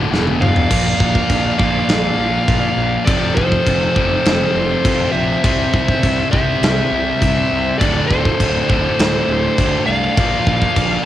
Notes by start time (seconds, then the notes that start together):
Already playing: D2 A2 D3
0.11 E1 E2 B2 E3, snare
0.27 high tom
0.41 D5 F5, mid tom
0.56 floor tom
0.70 A#1 A#2 F3 A#3, kick, crash
1.00 A#1, kick
1.15 kick
1.29 A#1, kick, crash
1.58 A#1 A#2 F3 A#3 D5 F5, kick
1.88 A#1, snare, crash
2.17 A#1
2.47 A#2 F3 A#3, kick, crash
2.77 A#1
3.05 F1 F2 C3 F3 A4 D5, kick, crash
3.35 F1 A4 C5, kick
3.52 kick
3.66 F1, kick, crash
3.95 F1 F2 C3 F3, kick
4.25 F1, snare, crash
4.54 F1
4.84 F2 C3 F3, kick, crash
5.12 A#1 C5 E5
5.43 C2 C3 G3 C4, kick, crash
5.74 C2, kick
5.88 kick
6.03 C2, kick, crash
6.31 C2 C3 G3 C4 C5 E5, kick
6.62 C2, snare, crash
6.92 C2
7.21 C2 C3 G3 C4, kick, crash
7.52 C2
7.78 D1 D2 A2 D3 A4 D5, kick, crash
8.07 D1 A4 C5, kick
8.25 kick
8.40 D1, kick, crash
8.69 D1 D2 A2 D3, kick
8.99 D1, snare, crash
9.28 D1
9.56 D2 A2 D3, kick, crash
9.85 C2 D5 F5
10.16 A#1 A#2 F3 A#3, kick, crash
10.47 A#1, kick
10.62 kick
10.76 A#1, kick, crash